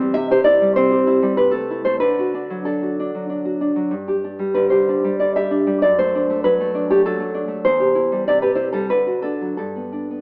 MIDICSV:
0, 0, Header, 1, 2, 480
1, 0, Start_track
1, 0, Tempo, 612245
1, 98, Time_signature, 3, 2, 24, 8
1, 1060, Tempo, 652884
1, 2500, Tempo, 632244
1, 3940, Tempo, 613497
1, 6820, Tempo, 680272
1, 7753, End_track
2, 0, Start_track
2, 0, Title_t, "Nylon-string guitar"
2, 0, Program_c, 0, 24
2, 0, Note_on_c, 0, 52, 65
2, 0, Note_on_c, 0, 60, 63
2, 5, Note_on_c, 0, 55, 58
2, 101, Note_off_c, 0, 60, 0
2, 109, Note_off_c, 0, 52, 0
2, 109, Note_on_c, 0, 76, 121
2, 110, Note_off_c, 0, 55, 0
2, 125, Note_on_c, 0, 48, 86
2, 221, Note_off_c, 0, 76, 0
2, 242, Note_on_c, 0, 67, 65
2, 247, Note_on_c, 0, 72, 84
2, 344, Note_off_c, 0, 72, 0
2, 347, Note_on_c, 0, 74, 106
2, 359, Note_on_c, 0, 64, 64
2, 482, Note_on_c, 0, 55, 61
2, 569, Note_off_c, 0, 74, 0
2, 595, Note_on_c, 0, 72, 105
2, 606, Note_on_c, 0, 60, 62
2, 706, Note_off_c, 0, 67, 0
2, 715, Note_on_c, 0, 67, 59
2, 829, Note_off_c, 0, 64, 0
2, 838, Note_on_c, 0, 64, 66
2, 951, Note_off_c, 0, 55, 0
2, 960, Note_on_c, 0, 55, 59
2, 1045, Note_off_c, 0, 48, 0
2, 1053, Note_off_c, 0, 72, 0
2, 1071, Note_off_c, 0, 67, 0
2, 1072, Note_off_c, 0, 55, 0
2, 1072, Note_off_c, 0, 64, 0
2, 1075, Note_on_c, 0, 71, 90
2, 1076, Note_off_c, 0, 60, 0
2, 1082, Note_on_c, 0, 48, 66
2, 1177, Note_on_c, 0, 69, 82
2, 1186, Note_off_c, 0, 71, 0
2, 1191, Note_on_c, 0, 57, 50
2, 1320, Note_on_c, 0, 64, 52
2, 1408, Note_off_c, 0, 69, 0
2, 1419, Note_off_c, 0, 57, 0
2, 1424, Note_on_c, 0, 72, 71
2, 1428, Note_on_c, 0, 57, 47
2, 1533, Note_off_c, 0, 72, 0
2, 1536, Note_off_c, 0, 48, 0
2, 1536, Note_on_c, 0, 71, 81
2, 1542, Note_off_c, 0, 57, 0
2, 1545, Note_on_c, 0, 50, 60
2, 1550, Note_off_c, 0, 64, 0
2, 1676, Note_on_c, 0, 66, 45
2, 1787, Note_on_c, 0, 62, 48
2, 1905, Note_on_c, 0, 54, 44
2, 2003, Note_off_c, 0, 71, 0
2, 2011, Note_off_c, 0, 62, 0
2, 2015, Note_on_c, 0, 69, 57
2, 2020, Note_on_c, 0, 62, 43
2, 2134, Note_off_c, 0, 66, 0
2, 2143, Note_on_c, 0, 66, 39
2, 2260, Note_off_c, 0, 62, 0
2, 2269, Note_on_c, 0, 62, 44
2, 2371, Note_off_c, 0, 54, 0
2, 2379, Note_on_c, 0, 54, 42
2, 2476, Note_off_c, 0, 69, 0
2, 2480, Note_off_c, 0, 62, 0
2, 2489, Note_on_c, 0, 62, 40
2, 2598, Note_off_c, 0, 66, 0
2, 2608, Note_on_c, 0, 66, 41
2, 2717, Note_off_c, 0, 62, 0
2, 2726, Note_on_c, 0, 62, 39
2, 2830, Note_off_c, 0, 54, 0
2, 2839, Note_on_c, 0, 54, 39
2, 2955, Note_off_c, 0, 50, 0
2, 2955, Note_on_c, 0, 43, 55
2, 2971, Note_off_c, 0, 54, 0
2, 2975, Note_off_c, 0, 62, 0
2, 2976, Note_off_c, 0, 66, 0
2, 3084, Note_on_c, 0, 67, 43
2, 3206, Note_on_c, 0, 62, 45
2, 3320, Note_on_c, 0, 55, 42
2, 3437, Note_on_c, 0, 71, 77
2, 3446, Note_on_c, 0, 50, 47
2, 3551, Note_off_c, 0, 71, 0
2, 3554, Note_on_c, 0, 72, 70
2, 3556, Note_off_c, 0, 67, 0
2, 3565, Note_on_c, 0, 67, 46
2, 3687, Note_off_c, 0, 62, 0
2, 3697, Note_on_c, 0, 62, 47
2, 3806, Note_off_c, 0, 55, 0
2, 3812, Note_off_c, 0, 50, 0
2, 3815, Note_on_c, 0, 55, 47
2, 3910, Note_off_c, 0, 72, 0
2, 3932, Note_on_c, 0, 74, 76
2, 3936, Note_on_c, 0, 50, 42
2, 4051, Note_off_c, 0, 67, 0
2, 4056, Note_off_c, 0, 74, 0
2, 4059, Note_on_c, 0, 76, 73
2, 4060, Note_on_c, 0, 67, 48
2, 4167, Note_off_c, 0, 62, 0
2, 4176, Note_on_c, 0, 62, 47
2, 4290, Note_off_c, 0, 55, 0
2, 4300, Note_on_c, 0, 55, 49
2, 4380, Note_off_c, 0, 43, 0
2, 4409, Note_off_c, 0, 76, 0
2, 4420, Note_on_c, 0, 74, 94
2, 4422, Note_off_c, 0, 62, 0
2, 4423, Note_off_c, 0, 55, 0
2, 4424, Note_off_c, 0, 50, 0
2, 4425, Note_off_c, 0, 67, 0
2, 4429, Note_on_c, 0, 42, 64
2, 4543, Note_off_c, 0, 74, 0
2, 4549, Note_on_c, 0, 72, 76
2, 4558, Note_on_c, 0, 57, 48
2, 4678, Note_on_c, 0, 62, 52
2, 4785, Note_off_c, 0, 57, 0
2, 4794, Note_on_c, 0, 57, 49
2, 4892, Note_off_c, 0, 72, 0
2, 4905, Note_on_c, 0, 71, 89
2, 4911, Note_on_c, 0, 54, 52
2, 5024, Note_off_c, 0, 57, 0
2, 5033, Note_on_c, 0, 57, 48
2, 5135, Note_off_c, 0, 62, 0
2, 5144, Note_on_c, 0, 62, 54
2, 5248, Note_off_c, 0, 71, 0
2, 5258, Note_off_c, 0, 57, 0
2, 5268, Note_on_c, 0, 57, 56
2, 5268, Note_on_c, 0, 67, 79
2, 5379, Note_off_c, 0, 54, 0
2, 5382, Note_off_c, 0, 67, 0
2, 5387, Note_on_c, 0, 69, 85
2, 5388, Note_on_c, 0, 54, 51
2, 5489, Note_off_c, 0, 57, 0
2, 5498, Note_on_c, 0, 57, 50
2, 5602, Note_off_c, 0, 62, 0
2, 5611, Note_on_c, 0, 62, 54
2, 5707, Note_off_c, 0, 57, 0
2, 5716, Note_on_c, 0, 57, 46
2, 5827, Note_off_c, 0, 42, 0
2, 5841, Note_off_c, 0, 69, 0
2, 5846, Note_off_c, 0, 57, 0
2, 5849, Note_on_c, 0, 72, 88
2, 5854, Note_off_c, 0, 62, 0
2, 5858, Note_on_c, 0, 40, 67
2, 5861, Note_off_c, 0, 54, 0
2, 5968, Note_on_c, 0, 67, 44
2, 6086, Note_on_c, 0, 64, 51
2, 6218, Note_on_c, 0, 55, 44
2, 6311, Note_off_c, 0, 72, 0
2, 6321, Note_off_c, 0, 40, 0
2, 6329, Note_off_c, 0, 64, 0
2, 6330, Note_off_c, 0, 67, 0
2, 6336, Note_off_c, 0, 55, 0
2, 6342, Note_on_c, 0, 74, 88
2, 6347, Note_on_c, 0, 48, 62
2, 6451, Note_off_c, 0, 74, 0
2, 6454, Note_on_c, 0, 71, 67
2, 6457, Note_on_c, 0, 67, 42
2, 6555, Note_off_c, 0, 71, 0
2, 6558, Note_on_c, 0, 64, 49
2, 6558, Note_on_c, 0, 72, 73
2, 6687, Note_off_c, 0, 72, 0
2, 6692, Note_on_c, 0, 69, 61
2, 6700, Note_on_c, 0, 55, 42
2, 6811, Note_off_c, 0, 48, 0
2, 6812, Note_off_c, 0, 64, 0
2, 6818, Note_off_c, 0, 69, 0
2, 6821, Note_off_c, 0, 67, 0
2, 6822, Note_off_c, 0, 55, 0
2, 6828, Note_on_c, 0, 71, 66
2, 6831, Note_on_c, 0, 50, 50
2, 6946, Note_on_c, 0, 66, 38
2, 7045, Note_off_c, 0, 71, 0
2, 7056, Note_on_c, 0, 69, 58
2, 7068, Note_on_c, 0, 62, 39
2, 7188, Note_on_c, 0, 54, 32
2, 7282, Note_off_c, 0, 50, 0
2, 7284, Note_off_c, 0, 69, 0
2, 7296, Note_off_c, 0, 66, 0
2, 7299, Note_off_c, 0, 62, 0
2, 7300, Note_off_c, 0, 54, 0
2, 7303, Note_on_c, 0, 69, 57
2, 7311, Note_on_c, 0, 43, 44
2, 7435, Note_on_c, 0, 59, 31
2, 7551, Note_on_c, 0, 62, 31
2, 7671, Note_off_c, 0, 59, 0
2, 7679, Note_on_c, 0, 59, 31
2, 7753, Note_off_c, 0, 43, 0
2, 7753, Note_off_c, 0, 59, 0
2, 7753, Note_off_c, 0, 62, 0
2, 7753, Note_off_c, 0, 69, 0
2, 7753, End_track
0, 0, End_of_file